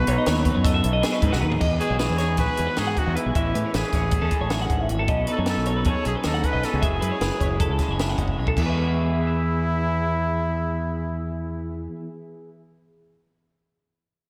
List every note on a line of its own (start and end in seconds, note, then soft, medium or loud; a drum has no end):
0.00 0.84 B2 medium
0.00 0.26 F#3 medium
0.00 0.47 G#3 medium
0.00 1.19 B4 medium
0.07 0.16 B1 medium
0.07 1.59 D#4 medium
0.07 0.18 C#5 medium
0.07 closed hi-hat medium
0.18 0.27 D#5 medium
0.26 0.52 D#2 medium
0.26 1.59 F#3 medium
0.26 0.46 C#5 medium
0.26 snare loud
0.26 closed hi-hat medium
0.45 0.55 B4 medium
0.45 kick medium
0.45 closed hi-hat medium
0.55 0.81 F#2 medium
0.55 0.64 C#5 medium
0.64 1.59 A4 medium
0.64 0.74 D#5 medium
0.64 kick loud
0.64 snare soft
0.64 closed hi-hat medium
0.74 0.93 E5 medium
0.82 1.01 B1 loud
0.82 1.58 F#2 medium
0.82 closed hi-hat medium
0.93 1.03 D#5 medium
1.01 1.21 B2 medium
1.01 1.12 G#4 medium
1.01 snare loud
1.01 closed hi-hat medium
1.12 1.32 B4 medium
1.22 1.31 G#2 loud
1.22 1.39 C#3 medium
1.22 kick medium
1.22 closed hi-hat medium
1.32 1.41 B1 medium
1.32 1.42 F#4 medium
1.32 snare soft
1.39 1.59 D#2 medium
1.39 1.60 D#3 medium
1.39 1.50 B4 medium
1.50 1.61 G#4 medium
1.50 floor tom medium
1.59 3.14 E2 medium
1.59 1.78 E2 medium
1.59 1.99 G#3 soft
1.59 1.80 D#5 medium
1.59 kick medium
1.59 crash medium
1.80 2.37 F#4 medium
1.80 1.98 G#4 medium
1.80 1.90 B4 medium
1.80 closed hi-hat medium
1.90 2.07 B1 medium
1.90 1.99 C#5 medium
1.99 3.34 E3 medium
1.99 2.56 G#3 soft
1.99 2.18 G#4 medium
1.99 2.18 B4 medium
1.99 snare loud
1.99 closed hi-hat medium
2.09 2.40 E2 medium
2.18 2.75 D#4 medium
2.18 2.37 G#4 medium
2.18 2.28 C#5 medium
2.18 snare soft
2.18 closed hi-hat soft
2.28 2.38 B4 medium
2.37 2.47 B1 medium
2.37 3.32 F#4 medium
2.37 2.46 G#4 medium
2.37 2.80 B4 medium
2.37 kick medium
2.37 snare soft
2.37 closed hi-hat medium
2.47 2.67 G#4 medium
2.57 2.67 E2 medium
2.57 3.35 B2 medium
2.57 2.96 G#3 medium
2.57 closed hi-hat medium
2.67 2.78 B4 medium
2.76 2.94 G#2 medium
2.76 3.32 D#4 medium
2.76 3.00 G#4 medium
2.76 2.87 D#5 medium
2.76 snare loud
2.76 closed hi-hat medium
2.87 3.06 F#5 medium
2.97 3.15 G#3 soft
2.97 3.18 F#4 medium
2.97 kick medium
2.97 closed hi-hat medium
3.06 3.15 E2 medium
3.06 3.16 E5 medium
3.15 3.35 E2 medium
3.15 3.35 G#3 soft
3.15 3.35 E4 medium
3.15 3.25 B4 medium
3.15 closed hi-hat medium
3.26 3.34 B1 medium
3.26 3.35 G#4 medium
3.35 3.52 A1 medium
3.35 4.50 A2 medium
3.35 3.73 E3 medium
3.35 3.73 G#3 medium
3.35 3.55 C#4 medium
3.35 3.77 E4 medium
3.35 3.55 E5 medium
3.35 kick medium
3.35 closed hi-hat medium
3.54 3.63 A2 medium
3.54 3.92 C#4 medium
3.54 3.65 B4 medium
3.54 closed hi-hat medium
3.65 3.74 C#5 medium
3.74 3.82 A1 medium
3.74 4.30 E3 medium
3.74 4.30 G#3 soft
3.74 4.90 G#4 medium
3.74 3.94 B4 medium
3.74 snare loud
3.74 closed hi-hat medium
3.93 4.18 A1 medium
3.93 4.11 C#4 soft
3.93 4.03 C#5 medium
3.93 kick medium
3.93 snare soft
3.93 closed hi-hat soft
4.03 4.12 B4 medium
4.11 4.21 B3 soft
4.11 4.21 A4 medium
4.11 kick loud
4.11 closed hi-hat medium
4.21 4.30 E2 medium
4.21 5.07 C#4 soft
4.21 4.41 A4 medium
4.31 5.06 E3 medium
4.31 5.08 G#3 medium
4.31 kick medium
4.31 closed hi-hat medium
4.41 4.66 A1 medium
4.41 4.51 C#5 medium
4.50 4.70 F#2 medium
4.50 4.60 E5 medium
4.50 snare loud
4.50 closed hi-hat medium
4.62 4.81 F#5 medium
4.70 4.87 A1 medium
4.70 4.89 G#2 medium
4.70 kick medium
4.70 closed hi-hat soft
4.81 4.89 E5 medium
4.89 5.06 G#1 medium
4.89 5.08 A2 medium
4.89 4.99 C#5 medium
4.89 closed hi-hat medium
4.99 5.09 A4 medium
5.08 5.25 B1 medium
5.08 6.05 B2 medium
5.08 5.46 C#4 soft
5.08 5.27 D#5 medium
5.08 kick loud
5.08 closed hi-hat medium
5.27 5.65 D#4 medium
5.27 5.37 B4 medium
5.27 closed hi-hat medium
5.32 5.40 A4 medium
5.37 5.55 F#2 medium
5.37 5.48 C#5 medium
5.46 6.84 F#3 medium
5.46 6.04 C#4 soft
5.46 5.66 A4 medium
5.46 5.66 B4 medium
5.46 snare loud
5.46 closed hi-hat medium
5.57 5.87 B1 medium
5.65 6.24 D#4 medium
5.65 5.90 A4 medium
5.65 5.76 C#5 medium
5.65 closed hi-hat soft
5.76 5.86 B4 medium
5.84 5.94 F#2 medium
5.84 5.95 G#4 medium
5.84 6.80 A4 medium
5.84 6.06 C#5 medium
5.84 kick loud
5.84 closed hi-hat medium
5.96 6.15 G#4 medium
6.04 6.14 B1 medium
6.04 6.63 F#2 medium
6.04 6.43 C#4 medium
6.04 6.15 G#4 medium
6.04 closed hi-hat medium
6.15 6.24 B4 medium
6.23 6.42 D#2 medium
6.23 6.80 D#4 medium
6.23 6.47 A4 medium
6.23 6.34 D#5 medium
6.23 snare loud
6.23 closed hi-hat medium
6.34 6.53 F#5 medium
6.44 6.63 C#4 soft
6.44 6.66 B4 medium
6.44 kick medium
6.44 closed hi-hat medium
6.53 6.62 B1 medium
6.53 6.63 D#5 medium
6.63 6.83 B2 medium
6.63 6.81 C#4 medium
6.63 6.86 A4 medium
6.63 6.72 B4 medium
6.63 snare soft
6.63 closed hi-hat medium
6.73 6.81 C#2 medium
6.73 6.82 G#4 medium
6.82 6.99 F#1 medium
6.82 8.37 F#2 medium
6.82 7.20 F#3 medium
6.82 7.21 G#3 medium
6.82 8.18 G#4 medium
6.82 7.01 E5 medium
6.82 kick loud
6.82 closed hi-hat medium
6.86 7.02 E4 medium
7.01 7.10 F#2 medium
7.01 7.41 E4 soft
7.01 7.11 B4 medium
7.01 closed hi-hat medium
7.12 7.21 C#5 medium
7.21 7.29 F#1 medium
7.21 8.54 F#3 medium
7.21 7.80 G#3 soft
7.21 7.40 B4 medium
7.21 snare loud
7.21 closed hi-hat medium
7.40 7.66 F#1 medium
7.40 7.60 E4 medium
7.40 7.51 C#5 medium
7.40 kick medium
7.40 closed hi-hat medium
7.51 7.60 B4 medium
7.60 7.99 E4 medium
7.60 7.70 A4 medium
7.60 kick loud
7.60 closed hi-hat medium
7.69 7.77 C#2 medium
7.69 7.91 A4 medium
7.79 8.55 C#3 medium
7.79 8.19 G#3 medium
7.79 kick medium
7.79 snare soft
7.79 closed hi-hat medium
7.88 8.14 F#1 medium
7.88 8.01 C#5 medium
7.99 8.55 E4 medium
7.99 8.10 E5 medium
7.99 snare loud
7.99 closed hi-hat medium
8.10 8.29 F#5 medium
8.18 8.35 F#1 medium
8.18 8.38 G#3 soft
8.18 kick medium
8.18 closed hi-hat soft
8.28 8.38 E5 medium
8.28 kick soft
8.38 8.54 B1 medium
8.38 8.55 F#2 medium
8.38 8.61 G#3 soft
8.38 8.47 C#5 medium
8.47 8.57 A4 medium
8.47 kick medium
8.55 11.87 E2 medium
8.55 12.08 E2 medium
8.55 12.09 E3 medium
8.55 11.85 E4 medium
8.55 8.62 E4 medium
8.55 kick loud
8.55 crash medium
8.62 9.15 G#3 medium
8.62 9.18 F#4 medium
8.62 11.95 G#4 medium
8.66 11.96 B4 medium
8.66 11.99 E5 medium
9.15 12.49 G#4 medium
9.21 12.55 B4 medium
9.27 12.61 E5 medium